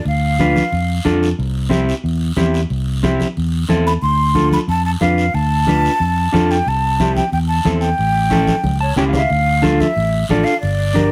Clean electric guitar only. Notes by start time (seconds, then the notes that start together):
0.40 D4 F4 B4
1.05 D4 F4 A4
1.69 C4 E4 G4
2.37 C4 E4 G4
3.03 C4 E4 G4
3.68 C4 E4 A4
4.35 D4 F4 A4
5.01 D4 F4 B4
5.68 D4 F4 B4
6.32 D4 F4 A4
7.00 C4 E4 G4
7.65 C4 E4 A4
8.30 C#4 E4 A4
8.80 A5
8.97 C#4 E4 G4 G5
9.09 F5
9.19 E5
9.62 D4 F4 A4
10.30 D4 F4 A4
10.94 D4 G4 A#4